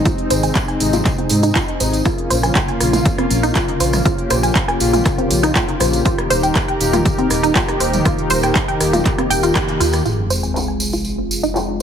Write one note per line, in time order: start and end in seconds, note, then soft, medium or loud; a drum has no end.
0.00 2.01 C4 medium
0.00 2.01 D#4 medium
0.00 2.01 G#4 medium
0.05 0.78 C3 medium
0.05 0.78 G#3 medium
0.05 0.78 D#4 medium
0.05 0.15 F4 loud
0.05 kick loud
0.05 closed hi-hat soft
0.05 tambourine soft
0.18 closed hi-hat soft
0.30 0.50 G#1 loud
0.30 0.43 C5 loud
0.30 open hi-hat loud
0.30 tambourine medium
0.43 0.52 G#5 medium
0.43 closed hi-hat soft
0.43 tambourine soft
0.55 kick loud
0.55 clap loud
0.55 closed hi-hat soft
0.55 tambourine soft
0.68 0.74 G#5 medium
0.68 closed hi-hat soft
0.80 1.00 G#1 medium
0.80 1.28 C3 medium
0.80 1.28 G#3 medium
0.80 1.28 D#4 loud
0.80 open hi-hat loud
0.80 tambourine medium
0.93 0.99 F4 medium
0.93 closed hi-hat soft
0.93 mid tom medium
0.93 tambourine medium
1.05 kick loud
1.05 clap soft
1.05 closed hi-hat soft
1.05 tambourine soft
1.18 1.27 C4 medium
1.18 closed hi-hat soft
1.29 1.50 G#2 medium
1.29 1.78 C3 medium
1.29 1.78 G#3 medium
1.29 1.78 D#4 medium
1.29 open hi-hat loud
1.29 tambourine loud
1.43 1.52 D#4 loud
1.43 closed hi-hat soft
1.43 tambourine medium
1.55 1.65 F4 medium
1.55 kick loud
1.55 clap loud
1.55 closed hi-hat soft
1.55 tambourine soft
1.68 closed hi-hat soft
1.80 2.00 G#1 loud
1.80 2.03 C3 medium
1.80 2.03 G#3 medium
1.80 2.03 D#4 medium
1.80 1.93 C5 medium
1.80 open hi-hat loud
1.80 tambourine loud
1.93 closed hi-hat soft
1.93 tambourine soft
2.05 2.78 C#3 medium
2.05 2.78 A#3 medium
2.05 6.01 A#3 medium
2.05 6.02 C#4 medium
2.05 2.78 F4 medium
2.05 2.15 F4 loud
2.05 4.03 F4 loud
2.05 kick loud
2.05 cross-stick medium
2.05 closed hi-hat soft
2.05 tambourine soft
2.18 closed hi-hat soft
2.30 2.50 A#1 loud
2.30 2.43 C5 loud
2.30 open hi-hat loud
2.30 tambourine medium
2.43 2.52 G#5 medium
2.43 cross-stick medium
2.43 closed hi-hat soft
2.43 tambourine soft
2.55 kick loud
2.55 clap loud
2.55 closed hi-hat soft
2.55 tambourine soft
2.68 2.74 G#5 medium
2.68 closed hi-hat soft
2.80 3.00 A#1 medium
2.80 4.03 C#3 medium
2.80 4.03 A#3 medium
2.80 4.03 F4 loud
2.80 cross-stick medium
2.80 open hi-hat loud
2.80 tambourine medium
2.93 2.99 F4 medium
2.93 closed hi-hat soft
2.93 mid tom medium
2.93 tambourine soft
3.05 kick loud
3.05 closed hi-hat soft
3.05 tambourine soft
3.18 3.27 C4 medium
3.18 cross-stick medium
3.18 closed hi-hat soft
3.30 3.50 A#1 medium
3.30 open hi-hat loud
3.30 tambourine medium
3.43 3.52 D#4 loud
3.43 closed hi-hat soft
3.43 tambourine medium
3.55 3.65 F4 medium
3.55 kick loud
3.55 cross-stick medium
3.55 clap loud
3.55 closed hi-hat soft
3.55 tambourine soft
3.68 closed hi-hat soft
3.80 4.00 A#1 medium
3.80 3.93 C5 medium
3.80 open hi-hat loud
3.80 tambourine medium
3.93 cross-stick medium
3.93 closed hi-hat soft
3.93 mid tom medium
3.93 tambourine medium
4.05 4.78 C#3 medium
4.05 4.78 A#3 medium
4.05 4.15 F4 loud
4.05 4.78 F4 medium
4.05 10.02 G4 medium
4.05 kick loud
4.05 closed hi-hat soft
4.05 tambourine soft
4.18 closed hi-hat soft
4.30 4.50 A#1 loud
4.30 4.43 C5 loud
4.30 cross-stick medium
4.30 open hi-hat loud
4.30 tambourine medium
4.43 4.52 G#5 medium
4.43 closed hi-hat soft
4.43 tambourine medium
4.55 kick loud
4.55 clap loud
4.55 closed hi-hat soft
4.55 tambourine soft
4.68 4.74 G#5 medium
4.68 cross-stick medium
4.68 closed hi-hat soft
4.80 5.00 A#1 medium
4.80 6.03 C#3 loud
4.80 6.03 A#3 medium
4.80 6.03 F4 loud
4.80 open hi-hat loud
4.80 tambourine medium
4.93 4.99 F4 medium
4.93 closed hi-hat soft
4.93 mid tom loud
4.93 tambourine soft
5.05 kick loud
5.05 cross-stick medium
5.05 clap soft
5.05 closed hi-hat soft
5.05 tambourine soft
5.18 5.27 C4 medium
5.18 closed hi-hat soft
5.30 5.50 A#1 medium
5.30 open hi-hat loud
5.30 tambourine medium
5.43 5.52 D#4 loud
5.43 cross-stick medium
5.43 closed hi-hat soft
5.43 tambourine medium
5.55 5.65 F4 medium
5.55 kick loud
5.55 clap loud
5.55 closed hi-hat soft
5.55 tambourine soft
5.68 closed hi-hat soft
5.80 6.00 A#1 medium
5.80 5.93 C5 medium
5.80 cross-stick medium
5.80 open hi-hat loud
5.80 tambourine medium
5.93 closed hi-hat soft
5.93 tambourine medium
6.05 6.78 D#3 medium
6.05 10.02 D#3 medium
6.05 6.78 A#3 medium
6.05 10.02 D#4 medium
6.05 6.15 F4 loud
6.05 6.78 G4 medium
6.05 10.02 A#4 medium
6.05 kick loud
6.05 closed hi-hat soft
6.05 tambourine soft
6.18 cross-stick medium
6.18 closed hi-hat soft
6.30 6.50 D#1 loud
6.30 6.43 C5 loud
6.30 open hi-hat loud
6.30 tambourine medium
6.43 6.52 G5 medium
6.43 closed hi-hat soft
6.43 tambourine medium
6.55 kick loud
6.55 cross-stick medium
6.55 clap loud
6.55 closed hi-hat soft
6.55 tambourine soft
6.68 6.74 G5 medium
6.68 closed hi-hat soft
6.80 7.00 D#1 medium
6.80 8.03 D#3 medium
6.80 8.03 A#3 medium
6.80 8.03 G4 loud
6.80 open hi-hat loud
6.80 tambourine medium
6.93 6.99 F4 medium
6.93 cross-stick medium
6.93 closed hi-hat soft
6.93 mid tom loud
6.93 tambourine soft
7.05 kick loud
7.05 closed hi-hat soft
7.05 tambourine soft
7.18 7.27 C4 medium
7.18 closed hi-hat soft
7.30 7.50 D#1 medium
7.30 cross-stick medium
7.30 open hi-hat loud
7.30 tambourine medium
7.43 7.52 D#4 loud
7.43 closed hi-hat soft
7.43 tambourine soft
7.55 7.65 F4 medium
7.55 kick loud
7.55 clap loud
7.55 closed hi-hat soft
7.55 tambourine soft
7.68 cross-stick medium
7.68 closed hi-hat soft
7.80 8.00 D#1 medium
7.80 7.93 C5 medium
7.80 open hi-hat loud
7.80 tambourine medium
7.93 closed hi-hat soft
7.93 mid tom medium
7.93 tambourine soft
8.05 8.78 D#3 medium
8.05 8.78 A#3 medium
8.05 8.15 F4 loud
8.05 8.78 G4 medium
8.05 kick loud
8.05 cross-stick medium
8.05 closed hi-hat soft
8.05 tambourine soft
8.18 closed hi-hat soft
8.30 8.50 D#1 loud
8.30 8.43 C5 loud
8.30 open hi-hat loud
8.30 tambourine loud
8.43 8.52 G5 medium
8.43 cross-stick medium
8.43 closed hi-hat soft
8.43 tambourine soft
8.55 kick loud
8.55 clap loud
8.55 closed hi-hat soft
8.55 tambourine soft
8.68 8.74 G5 medium
8.68 closed hi-hat soft
8.80 9.00 D#1 medium
8.80 10.03 D#3 medium
8.80 10.03 A#3 medium
8.80 10.03 G4 loud
8.80 cross-stick medium
8.80 open hi-hat loud
8.80 tambourine medium
8.93 8.99 F4 medium
8.93 closed hi-hat soft
8.93 mid tom loud
8.93 tambourine soft
9.05 kick loud
9.05 clap soft
9.05 closed hi-hat soft
9.05 tambourine soft
9.18 9.27 C4 medium
9.18 cross-stick medium
9.18 closed hi-hat soft
9.30 9.50 D#1 medium
9.30 9.36 G5 loud
9.30 open hi-hat loud
9.30 tambourine medium
9.43 9.55 F4 medium
9.43 closed hi-hat soft
9.43 tambourine soft
9.55 9.65 G4 medium
9.55 kick loud
9.55 cross-stick medium
9.55 clap loud
9.55 closed hi-hat soft
9.55 tambourine soft
9.68 closed hi-hat soft
9.80 10.00 D#2 medium
9.80 9.86 F4 medium
9.80 open hi-hat loud
9.80 tambourine medium
9.93 cross-stick medium
9.93 closed hi-hat soft
9.93 tambourine soft
10.05 11.82 F1 medium
10.05 11.82 F3 medium
10.05 11.82 G#3 medium
10.05 11.82 C4 medium
10.05 10.15 F4 loud
10.05 11.82 F4 medium
10.05 11.82 G#4 medium
10.05 tambourine soft
10.05 sub drop medium
10.30 10.43 C5 medium
10.30 tambourine medium
10.43 10.52 G#5 medium
10.43 tambourine soft
10.56 clap loud
10.56 tambourine soft
10.68 10.74 G#5 medium
10.80 tambourine medium
10.93 10.99 F4 medium
10.93 tambourine medium
11.05 tambourine soft
11.18 11.27 C4 medium
11.31 tambourine medium
11.43 11.52 D#4 loud
11.43 tambourine soft
11.55 11.65 F4 medium
11.55 clap loud
11.55 tambourine soft